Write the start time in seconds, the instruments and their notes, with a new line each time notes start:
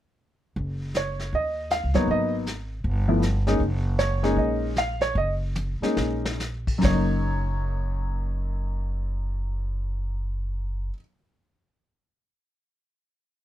0.56 upright bass F#1, brush sweep, kick
0.94 grand piano C#5, snare, hi-hat pedal
1.19 snare
1.33 upright bass D#2, grand piano D#5, brush sweep, kick
1.70 grand piano F5, snare, hi-hat pedal
1.84 upright bass C#2
1.94 upright bass G1, grand piano F#3 A#3 B3 D#4 C#5, snare
2.08 upright bass G#1, grand piano D#5, brush sweep, kick
2.46 snare, hi-hat pedal
2.84 upright bass G1, brush sweep, kick
3.08 grand piano F3 A3 B3 E4
3.22 snare, hi-hat pedal
3.47 grand piano G#3 A#3 C#4 D#4, snare
3.60 upright bass F#1, brush sweep, kick
3.98 grand piano C#5, snare, hi-hat pedal
4.23 grand piano G#3 A#3 C#4 D#4, snare
4.36 upright bass A#1, grand piano D#5, brush sweep, kick
4.76 grand piano F5, snare, hi-hat pedal
5.01 grand piano C#5, snare
5.15 upright bass F#1, grand piano D#5, brush sweep, kick
5.55 hi-hat pedal, high tom
5.81 grand piano G#3 A#3 C#4 D#4, muted upright bass stroke, snare
5.97 upright bass A#1, snare
6.25 snare
6.40 snare, hi-hat pedal
6.67 kick, crash
6.78 grand piano F#2
6.82 upright bass F#1, grand piano F#3 C#5, kick, snare, open hi-hat
6.87 grand piano A#3 D#4